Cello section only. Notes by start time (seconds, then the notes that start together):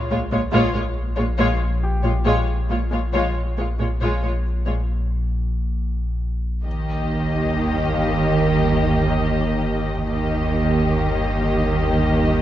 0.12 A#2
0.32 A#2
0.53 A#2
0.75 A#2
1.18 A#2
1.39 A#2
2.03 A#2
2.25 A#2
2.71 A#2
2.92 A#2
3.14 A#2
3.58 A#2
3.79 A#2
4.00 A#2
4.23 A#2
4.66 A#2
6.64 D#3
10.09 D#3